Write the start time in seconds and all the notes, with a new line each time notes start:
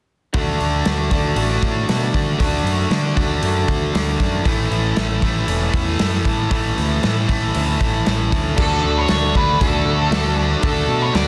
0.33 D2 D3 A3 D4 F#4, kick, open hi-hat
0.60 D2 A3 D4 F#4, open hi-hat
0.85 D2 D3 A3 D4 F#4, snare, open hi-hat
1.11 D2 D3 A3 D4 F#4, kick, open hi-hat
1.35 A1 D3 A3 D4 F#4, open hi-hat
1.62 A2, kick, open hi-hat
1.88 B2 D3 A3 D4 F#4, snare, open hi-hat
2.13 D3 A3 D4 F#4, kick, open hi-hat
2.38 D2 D3 A3 D4 F#4, kick, open hi-hat
2.63 F#2 A3 D4 F#4, open hi-hat
2.89 D3 A3 D4 F#4, snare, open hi-hat
3.15 D2 D3 A3 D4 F#4, kick, open hi-hat
3.42 F#2 D3 A3 D4 F#4, open hi-hat
3.68 D2, kick, open hi-hat
3.92 D2 D3 A3 D4 F#4, snare, open hi-hat
4.18 F#2 A3 D4 F#4, kick, open hi-hat
4.43 A1 A2 E3 A3 C#4 E4, kick, open hi-hat
4.70 A1 A3 C#4 E4, open hi-hat
4.95 A1 E3 A3 C#4 E4, snare, open hi-hat
5.21 A1 E3 A3 C#4 E4, kick, open hi-hat
5.25 A2
5.46 E1 A2 E3 A3 C#4 E4, open hi-hat
5.73 E2, kick, open hi-hat
5.99 F#2 E3 A3 C#4 E4, snare, open hi-hat
6.24 A2 A3 C#4 E4, kick, open hi-hat
6.50 A1 A2 E3 A3 C#4 E4, kick, open hi-hat
6.75 D2 A3 C#4 E4, open hi-hat
7.01 A2 E3 A3 C#4 E4, snare, open hi-hat
7.28 A1 A2 E3 A3 C#4 E4, kick, open hi-hat
7.54 D2 A2 E3 A3 C#4 E4, open hi-hat
7.80 A1, kick, open hi-hat
8.05 A1 E3 A3 C#4 E4, snare, open hi-hat
8.31 D2 A3 C#4 E4, kick, open hi-hat
8.56 D2 D3 A3 D4 F#4 A4, kick, crash
8.83 D2 A3 D4 F#4
8.98 C#5
9.08 D2 D3 A3 D4 F#4, snare, open hi-hat
9.34 D2 D3 A3 D4 F#4 B4, kick
9.59 D2 D3 A3 D4 F#4 A4, kick, open hi-hat
9.85 D2 D3 A3 D4 F#4
10.09 D2 D3 A3 D4 F#4, snare, open hi-hat
10.36 D3 A3 D4 F#4
10.61 D2 D3 A3 D4 F#4 A4, kick, open hi-hat
10.87 B2 A3 D4 F#4
11.02 C#5
11.13 D2 D3 A3 D4 F#4 D5, snare, open hi-hat